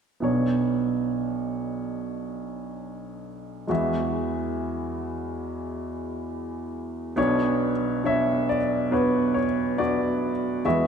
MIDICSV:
0, 0, Header, 1, 2, 480
1, 0, Start_track
1, 0, Tempo, 868307
1, 125, Time_signature, 4, 2, 24, 8
1, 6009, End_track
2, 0, Start_track
2, 0, Title_t, "Upright piano"
2, 0, Program_c, 0, 0
2, 112, Note_on_c, 0, 59, 45
2, 120, Note_on_c, 0, 35, 45
2, 122, Note_on_c, 0, 62, 43
2, 123, Note_on_c, 0, 47, 46
2, 131, Note_on_c, 0, 73, 51
2, 243, Control_c, 0, 64, 127
2, 2016, Note_off_c, 0, 59, 0
2, 2020, Note_off_c, 0, 35, 0
2, 2021, Note_off_c, 0, 47, 0
2, 2021, Note_off_c, 0, 62, 0
2, 2025, Note_off_c, 0, 73, 0
2, 2031, Note_on_c, 0, 56, 49
2, 2040, Note_on_c, 0, 66, 45
2, 2042, Note_on_c, 0, 40, 51
2, 2044, Note_on_c, 0, 52, 51
2, 2052, Control_c, 0, 64, 0
2, 2052, Note_on_c, 0, 76, 55
2, 2161, Control_c, 0, 64, 127
2, 3938, Note_off_c, 0, 56, 0
2, 3942, Note_off_c, 0, 66, 0
2, 3944, Note_off_c, 0, 40, 0
2, 3944, Note_off_c, 0, 52, 0
2, 3948, Note_off_c, 0, 76, 0
2, 3959, Note_on_c, 0, 59, 63
2, 3965, Note_on_c, 0, 35, 54
2, 3965, Note_on_c, 0, 47, 58
2, 3966, Note_on_c, 0, 62, 59
2, 3967, Note_on_c, 0, 73, 74
2, 3974, Control_c, 0, 64, 0
2, 4071, Control_c, 0, 64, 127
2, 4253, Note_off_c, 0, 59, 0
2, 4257, Note_off_c, 0, 62, 0
2, 4257, Note_off_c, 0, 73, 0
2, 4442, Note_on_c, 0, 59, 52
2, 4445, Note_on_c, 0, 62, 48
2, 4452, Note_on_c, 0, 73, 61
2, 4457, Note_on_c, 0, 76, 71
2, 4677, Note_off_c, 0, 76, 0
2, 4695, Note_on_c, 0, 74, 64
2, 4736, Note_off_c, 0, 59, 0
2, 4738, Note_off_c, 0, 62, 0
2, 4741, Note_off_c, 0, 73, 0
2, 4926, Note_on_c, 0, 59, 52
2, 4930, Note_on_c, 0, 62, 47
2, 4932, Note_on_c, 0, 71, 61
2, 4937, Note_on_c, 0, 66, 47
2, 4937, Note_on_c, 0, 73, 56
2, 4939, Note_off_c, 0, 74, 0
2, 5157, Note_off_c, 0, 73, 0
2, 5165, Note_on_c, 0, 73, 62
2, 5178, Note_off_c, 0, 71, 0
2, 5218, Note_off_c, 0, 59, 0
2, 5220, Note_off_c, 0, 62, 0
2, 5405, Note_off_c, 0, 66, 0
2, 5406, Note_on_c, 0, 59, 51
2, 5408, Note_on_c, 0, 74, 68
2, 5411, Note_on_c, 0, 62, 52
2, 5414, Note_off_c, 0, 73, 0
2, 5414, Note_on_c, 0, 66, 53
2, 5697, Note_off_c, 0, 59, 0
2, 5699, Note_off_c, 0, 62, 0
2, 5865, Note_off_c, 0, 35, 0
2, 5865, Note_off_c, 0, 47, 0
2, 5865, Note_off_c, 0, 74, 0
2, 5868, Note_off_c, 0, 66, 0
2, 5887, Note_on_c, 0, 40, 49
2, 5887, Note_on_c, 0, 56, 52
2, 5889, Note_on_c, 0, 76, 68
2, 5890, Note_on_c, 0, 52, 46
2, 5890, Note_on_c, 0, 66, 53
2, 5895, Control_c, 0, 64, 0
2, 5898, Note_on_c, 0, 71, 51
2, 5900, Note_on_c, 0, 68, 51
2, 5990, Control_c, 0, 64, 127
2, 6009, Note_off_c, 0, 40, 0
2, 6009, Note_off_c, 0, 52, 0
2, 6009, Note_off_c, 0, 56, 0
2, 6009, Note_off_c, 0, 66, 0
2, 6009, Note_off_c, 0, 68, 0
2, 6009, Note_off_c, 0, 71, 0
2, 6009, Note_off_c, 0, 76, 0
2, 6009, End_track
0, 0, End_of_file